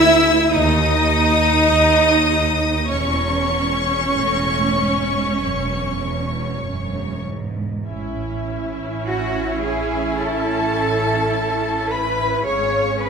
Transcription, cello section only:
0.00 0.39 D2 medium
0.53 1.55 D#2 medium
1.69 2.77 D#2 medium
2.92 4.02 E2 medium
4.17 4.75 A2 medium
4.78 5.40 G#2 medium
5.40 6.01 F#2 medium
6.02 6.63 E2 medium
6.62 7.26 F#2 medium
7.27 7.88 G#2 medium
9.05 9.59 F#4 medium
9.63 10.21 G#4 medium
10.21 11.91 A4 medium
11.92 12.46 B4 medium
12.46 13.00 C#5 medium
13.02 13.09 B4 medium

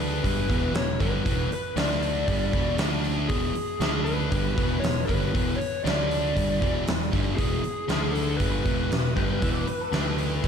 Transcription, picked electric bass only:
0.00 0.19 D2 medium
0.24 0.47 G1 medium
0.50 0.73 E1 medium
0.73 0.97 E1 medium
1.00 1.24 G1 medium
1.26 1.49 E1 medium
1.50 muted picked electric bass stroke soft
1.76 2.23 D2 medium
2.28 2.51 G1 medium
2.53 2.77 E1 medium
2.78 3.26 D2 medium
3.30 3.53 E1 medium
3.54 muted picked electric bass stroke soft
3.80 4.28 D2 medium
4.32 4.55 G1 medium
4.58 4.81 E1 medium
4.82 5.06 E1 medium
5.09 5.33 G1 medium
5.35 5.58 E1 medium
5.60 muted picked electric bass stroke soft
5.85 6.32 D2 medium
6.36 6.60 G1 medium
6.62 6.86 E1 medium
6.88 7.11 E1 medium
7.13 7.37 G1 medium
7.38 7.62 E1 medium
7.64 muted picked electric bass stroke soft
7.90 8.37 D2 medium
8.40 8.64 G1 medium
8.66 8.89 E1 medium
8.91 9.15 E1 medium
9.17 9.40 G1 medium
9.42 9.66 E1 medium
9.68 muted picked electric bass stroke soft
9.92 10.40 D2 medium
10.44 10.48 G1 medium

